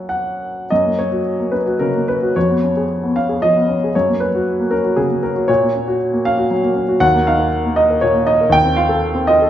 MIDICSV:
0, 0, Header, 1, 2, 480
1, 0, Start_track
1, 0, Key_signature, 6, "major"
1, 0, Tempo, 594648
1, 567, Time_signature, 3, 2, 24, 8
1, 567, Tempo, 551978
1, 1527, Tempo, 531915
1, 3447, Tempo, 515907
1, 5367, Tempo, 505902
1, 8688, End_track
2, 0, Start_track
2, 0, Title_t, "Grand piano"
2, 0, Program_c, 0, 0
2, 0, Control_c, 0, 64, 127
2, 0, Note_on_c, 0, 42, 44
2, 0, Note_on_c, 0, 58, 30
2, 0, Note_on_c, 0, 61, 33
2, 0, Note_on_c, 0, 66, 33
2, 0, Note_on_c, 0, 78, 59
2, 72, Note_off_c, 0, 78, 0
2, 72, Note_on_c, 0, 78, 60
2, 514, Note_off_c, 0, 42, 0
2, 518, Note_off_c, 0, 58, 0
2, 525, Note_off_c, 0, 61, 0
2, 530, Note_off_c, 0, 66, 0
2, 559, Note_off_c, 0, 78, 0
2, 569, Note_on_c, 0, 75, 65
2, 581, Control_c, 0, 64, 0
2, 582, Note_on_c, 0, 42, 51
2, 700, Note_on_c, 0, 58, 32
2, 739, Control_c, 0, 64, 127
2, 807, Note_off_c, 0, 75, 0
2, 814, Note_on_c, 0, 73, 51
2, 822, Note_on_c, 0, 61, 39
2, 884, Note_off_c, 0, 58, 0
2, 928, Note_on_c, 0, 66, 34
2, 1004, Note_off_c, 0, 61, 0
2, 1169, Note_on_c, 0, 58, 32
2, 1274, Note_on_c, 0, 71, 55
2, 1279, Note_on_c, 0, 61, 39
2, 1290, Note_off_c, 0, 73, 0
2, 1311, Note_off_c, 0, 66, 0
2, 1361, Note_off_c, 0, 58, 0
2, 1402, Note_on_c, 0, 66, 36
2, 1476, Note_off_c, 0, 61, 0
2, 1516, Note_on_c, 0, 70, 61
2, 1521, Note_off_c, 0, 71, 0
2, 1526, Note_on_c, 0, 49, 39
2, 1600, Note_off_c, 0, 66, 0
2, 1661, Note_on_c, 0, 58, 32
2, 1726, Note_off_c, 0, 49, 0
2, 1770, Note_off_c, 0, 70, 0
2, 1776, Note_on_c, 0, 71, 57
2, 1783, Note_on_c, 0, 61, 33
2, 1854, Note_off_c, 0, 58, 0
2, 1905, Note_on_c, 0, 66, 35
2, 1976, Note_off_c, 0, 61, 0
2, 1993, Note_off_c, 0, 42, 0
2, 2021, Note_off_c, 0, 71, 0
2, 2025, Note_off_c, 0, 66, 0
2, 2026, Note_on_c, 0, 73, 68
2, 2028, Note_on_c, 0, 41, 45
2, 2038, Control_c, 0, 64, 0
2, 2150, Note_on_c, 0, 59, 34
2, 2196, Control_c, 0, 64, 127
2, 2273, Note_on_c, 0, 61, 36
2, 2338, Note_off_c, 0, 59, 0
2, 2395, Note_on_c, 0, 68, 37
2, 2458, Note_off_c, 0, 61, 0
2, 2632, Note_on_c, 0, 59, 35
2, 2740, Note_off_c, 0, 73, 0
2, 2747, Note_on_c, 0, 77, 59
2, 2750, Note_on_c, 0, 61, 35
2, 2768, Note_off_c, 0, 68, 0
2, 2816, Note_off_c, 0, 59, 0
2, 2866, Note_on_c, 0, 68, 38
2, 2934, Note_off_c, 0, 61, 0
2, 2979, Note_off_c, 0, 77, 0
2, 2984, Note_on_c, 0, 75, 71
2, 2989, Note_on_c, 0, 53, 35
2, 3050, Note_off_c, 0, 68, 0
2, 3113, Note_on_c, 0, 59, 33
2, 3170, Note_off_c, 0, 53, 0
2, 3223, Note_on_c, 0, 61, 36
2, 3292, Note_off_c, 0, 59, 0
2, 3361, Note_on_c, 0, 68, 36
2, 3406, Note_off_c, 0, 61, 0
2, 3415, Note_off_c, 0, 41, 0
2, 3453, Note_off_c, 0, 75, 0
2, 3464, Note_off_c, 0, 68, 0
2, 3464, Control_c, 0, 64, 0
2, 3465, Note_on_c, 0, 73, 57
2, 3471, Note_on_c, 0, 42, 50
2, 3585, Note_on_c, 0, 58, 36
2, 3614, Control_c, 0, 64, 127
2, 3696, Note_on_c, 0, 71, 58
2, 3700, Note_off_c, 0, 73, 0
2, 3707, Note_on_c, 0, 61, 37
2, 3772, Note_off_c, 0, 58, 0
2, 3832, Note_on_c, 0, 66, 37
2, 3893, Note_off_c, 0, 61, 0
2, 4064, Note_on_c, 0, 58, 34
2, 4166, Note_on_c, 0, 70, 63
2, 4176, Note_off_c, 0, 71, 0
2, 4176, Note_on_c, 0, 61, 40
2, 4207, Note_off_c, 0, 66, 0
2, 4250, Note_off_c, 0, 58, 0
2, 4293, Note_on_c, 0, 66, 40
2, 4365, Note_off_c, 0, 61, 0
2, 4404, Note_on_c, 0, 68, 63
2, 4408, Note_off_c, 0, 70, 0
2, 4414, Note_on_c, 0, 49, 40
2, 4483, Note_off_c, 0, 66, 0
2, 4531, Note_on_c, 0, 58, 36
2, 4603, Note_off_c, 0, 49, 0
2, 4646, Note_off_c, 0, 68, 0
2, 4651, Note_on_c, 0, 70, 57
2, 4663, Note_on_c, 0, 61, 37
2, 4722, Note_off_c, 0, 58, 0
2, 4771, Note_on_c, 0, 66, 36
2, 4848, Note_off_c, 0, 61, 0
2, 4863, Note_off_c, 0, 42, 0
2, 4884, Note_on_c, 0, 73, 70
2, 4890, Note_off_c, 0, 66, 0
2, 4890, Note_off_c, 0, 70, 0
2, 4896, Note_on_c, 0, 46, 52
2, 4907, Control_c, 0, 64, 0
2, 5017, Note_on_c, 0, 58, 37
2, 5059, Control_c, 0, 64, 127
2, 5140, Note_on_c, 0, 61, 42
2, 5204, Note_off_c, 0, 58, 0
2, 5253, Note_on_c, 0, 66, 44
2, 5326, Note_off_c, 0, 61, 0
2, 5494, Note_on_c, 0, 58, 37
2, 5608, Note_off_c, 0, 73, 0
2, 5610, Note_on_c, 0, 77, 73
2, 5620, Note_on_c, 0, 61, 39
2, 5637, Note_off_c, 0, 66, 0
2, 5685, Note_off_c, 0, 58, 0
2, 5727, Note_on_c, 0, 66, 46
2, 5807, Note_off_c, 0, 61, 0
2, 5850, Note_off_c, 0, 77, 0
2, 5851, Note_on_c, 0, 54, 44
2, 5920, Note_off_c, 0, 66, 0
2, 5965, Note_on_c, 0, 58, 36
2, 6041, Note_off_c, 0, 54, 0
2, 6087, Note_on_c, 0, 61, 43
2, 6157, Note_off_c, 0, 58, 0
2, 6211, Note_on_c, 0, 66, 42
2, 6276, Note_off_c, 0, 61, 0
2, 6289, Note_off_c, 0, 46, 0
2, 6321, Note_on_c, 0, 78, 88
2, 6323, Note_on_c, 0, 39, 61
2, 6326, Note_off_c, 0, 66, 0
2, 6339, Control_c, 0, 64, 0
2, 6448, Note_on_c, 0, 58, 44
2, 6465, Control_c, 0, 64, 127
2, 6559, Note_off_c, 0, 78, 0
2, 6574, Note_on_c, 0, 77, 75
2, 6580, Note_on_c, 0, 63, 44
2, 6635, Note_off_c, 0, 58, 0
2, 6686, Note_on_c, 0, 70, 44
2, 6763, Note_off_c, 0, 63, 0
2, 6936, Note_on_c, 0, 58, 41
2, 7041, Note_on_c, 0, 75, 74
2, 7045, Note_on_c, 0, 63, 42
2, 7053, Note_off_c, 0, 77, 0
2, 7073, Note_off_c, 0, 70, 0
2, 7124, Note_off_c, 0, 58, 0
2, 7174, Note_on_c, 0, 70, 50
2, 7239, Note_off_c, 0, 63, 0
2, 7279, Note_on_c, 0, 73, 71
2, 7285, Note_off_c, 0, 75, 0
2, 7291, Note_on_c, 0, 46, 44
2, 7363, Note_off_c, 0, 70, 0
2, 7401, Note_on_c, 0, 58, 39
2, 7482, Note_off_c, 0, 46, 0
2, 7519, Note_on_c, 0, 75, 73
2, 7524, Note_off_c, 0, 73, 0
2, 7531, Note_on_c, 0, 63, 43
2, 7596, Note_off_c, 0, 58, 0
2, 7656, Note_on_c, 0, 70, 48
2, 7720, Note_off_c, 0, 63, 0
2, 7722, Note_off_c, 0, 39, 0
2, 7736, Note_on_c, 0, 39, 64
2, 7762, Note_off_c, 0, 75, 0
2, 7764, Note_on_c, 0, 79, 96
2, 7770, Note_off_c, 0, 70, 0
2, 7779, Control_c, 0, 64, 0
2, 7877, Note_on_c, 0, 60, 41
2, 7941, Control_c, 0, 64, 127
2, 7992, Note_on_c, 0, 77, 68
2, 7996, Note_on_c, 0, 65, 46
2, 8001, Note_off_c, 0, 79, 0
2, 8071, Note_off_c, 0, 60, 0
2, 8110, Note_on_c, 0, 69, 49
2, 8191, Note_off_c, 0, 65, 0
2, 8349, Note_on_c, 0, 60, 46
2, 8475, Note_on_c, 0, 75, 78
2, 8482, Note_off_c, 0, 77, 0
2, 8488, Note_on_c, 0, 65, 43
2, 8506, Note_off_c, 0, 69, 0
2, 8552, Note_off_c, 0, 60, 0
2, 8613, Note_on_c, 0, 69, 53
2, 8682, Note_off_c, 0, 65, 0
2, 8688, Note_off_c, 0, 39, 0
2, 8688, Note_off_c, 0, 69, 0
2, 8688, Note_off_c, 0, 75, 0
2, 8688, End_track
0, 0, End_of_file